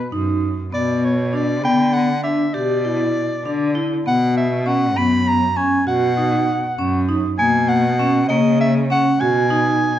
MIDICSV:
0, 0, Header, 1, 4, 480
1, 0, Start_track
1, 0, Tempo, 606061
1, 573, Time_signature, 11, 3, 24, 8
1, 7913, End_track
2, 0, Start_track
2, 0, Title_t, "Soprano saxophone"
2, 0, Program_c, 0, 64
2, 0, Note_on_c, 0, 71, 77
2, 98, Note_off_c, 0, 71, 0
2, 587, Note_on_c, 0, 74, 82
2, 828, Note_on_c, 0, 73, 66
2, 840, Note_off_c, 0, 74, 0
2, 1072, Note_on_c, 0, 74, 75
2, 1084, Note_off_c, 0, 73, 0
2, 1303, Note_off_c, 0, 74, 0
2, 1306, Note_on_c, 0, 79, 97
2, 1534, Note_on_c, 0, 78, 84
2, 1546, Note_off_c, 0, 79, 0
2, 1766, Note_off_c, 0, 78, 0
2, 1770, Note_on_c, 0, 76, 73
2, 2012, Note_on_c, 0, 74, 75
2, 2023, Note_off_c, 0, 76, 0
2, 2973, Note_off_c, 0, 74, 0
2, 3228, Note_on_c, 0, 78, 86
2, 3445, Note_off_c, 0, 78, 0
2, 3463, Note_on_c, 0, 76, 71
2, 3701, Note_on_c, 0, 78, 83
2, 3713, Note_off_c, 0, 76, 0
2, 3939, Note_on_c, 0, 83, 106
2, 3950, Note_off_c, 0, 78, 0
2, 4184, Note_on_c, 0, 82, 94
2, 4196, Note_off_c, 0, 83, 0
2, 4408, Note_on_c, 0, 80, 81
2, 4420, Note_off_c, 0, 82, 0
2, 4649, Note_off_c, 0, 80, 0
2, 4654, Note_on_c, 0, 78, 80
2, 5582, Note_off_c, 0, 78, 0
2, 5848, Note_on_c, 0, 80, 97
2, 6085, Note_on_c, 0, 78, 84
2, 6097, Note_off_c, 0, 80, 0
2, 6559, Note_off_c, 0, 78, 0
2, 6563, Note_on_c, 0, 75, 87
2, 6791, Note_off_c, 0, 75, 0
2, 6819, Note_on_c, 0, 76, 73
2, 6925, Note_off_c, 0, 76, 0
2, 7060, Note_on_c, 0, 78, 85
2, 7292, Note_on_c, 0, 80, 90
2, 7303, Note_off_c, 0, 78, 0
2, 7913, Note_off_c, 0, 80, 0
2, 7913, End_track
3, 0, Start_track
3, 0, Title_t, "Vibraphone"
3, 0, Program_c, 1, 11
3, 97, Note_on_c, 1, 63, 64
3, 410, Note_off_c, 1, 63, 0
3, 573, Note_on_c, 1, 59, 62
3, 887, Note_off_c, 1, 59, 0
3, 1053, Note_on_c, 1, 62, 58
3, 1210, Note_off_c, 1, 62, 0
3, 1295, Note_on_c, 1, 59, 75
3, 1609, Note_off_c, 1, 59, 0
3, 1771, Note_on_c, 1, 62, 65
3, 1929, Note_off_c, 1, 62, 0
3, 2013, Note_on_c, 1, 67, 77
3, 2170, Note_off_c, 1, 67, 0
3, 2256, Note_on_c, 1, 64, 62
3, 2569, Note_off_c, 1, 64, 0
3, 2736, Note_on_c, 1, 62, 61
3, 2893, Note_off_c, 1, 62, 0
3, 2971, Note_on_c, 1, 64, 66
3, 3129, Note_off_c, 1, 64, 0
3, 3215, Note_on_c, 1, 59, 66
3, 3529, Note_off_c, 1, 59, 0
3, 3690, Note_on_c, 1, 61, 68
3, 3849, Note_off_c, 1, 61, 0
3, 3933, Note_on_c, 1, 59, 76
3, 4247, Note_off_c, 1, 59, 0
3, 4410, Note_on_c, 1, 61, 68
3, 4569, Note_off_c, 1, 61, 0
3, 4648, Note_on_c, 1, 66, 74
3, 4807, Note_off_c, 1, 66, 0
3, 4890, Note_on_c, 1, 63, 62
3, 5205, Note_off_c, 1, 63, 0
3, 5373, Note_on_c, 1, 61, 68
3, 5531, Note_off_c, 1, 61, 0
3, 5612, Note_on_c, 1, 63, 68
3, 5770, Note_off_c, 1, 63, 0
3, 5854, Note_on_c, 1, 58, 65
3, 6168, Note_off_c, 1, 58, 0
3, 6332, Note_on_c, 1, 61, 71
3, 6489, Note_off_c, 1, 61, 0
3, 6572, Note_on_c, 1, 58, 83
3, 6886, Note_off_c, 1, 58, 0
3, 7050, Note_on_c, 1, 61, 72
3, 7208, Note_off_c, 1, 61, 0
3, 7293, Note_on_c, 1, 66, 82
3, 7450, Note_off_c, 1, 66, 0
3, 7528, Note_on_c, 1, 63, 72
3, 7843, Note_off_c, 1, 63, 0
3, 7913, End_track
4, 0, Start_track
4, 0, Title_t, "Cello"
4, 0, Program_c, 2, 42
4, 93, Note_on_c, 2, 42, 69
4, 478, Note_off_c, 2, 42, 0
4, 575, Note_on_c, 2, 47, 77
4, 1295, Note_on_c, 2, 50, 73
4, 1306, Note_off_c, 2, 47, 0
4, 1873, Note_off_c, 2, 50, 0
4, 2014, Note_on_c, 2, 47, 73
4, 2592, Note_off_c, 2, 47, 0
4, 2726, Note_on_c, 2, 50, 70
4, 3115, Note_off_c, 2, 50, 0
4, 3214, Note_on_c, 2, 47, 78
4, 3929, Note_on_c, 2, 42, 77
4, 3941, Note_off_c, 2, 47, 0
4, 4509, Note_off_c, 2, 42, 0
4, 4647, Note_on_c, 2, 47, 81
4, 5227, Note_off_c, 2, 47, 0
4, 5368, Note_on_c, 2, 42, 81
4, 5756, Note_off_c, 2, 42, 0
4, 5849, Note_on_c, 2, 47, 85
4, 6567, Note_on_c, 2, 49, 80
4, 6579, Note_off_c, 2, 47, 0
4, 7147, Note_off_c, 2, 49, 0
4, 7281, Note_on_c, 2, 47, 82
4, 7863, Note_off_c, 2, 47, 0
4, 7913, End_track
0, 0, End_of_file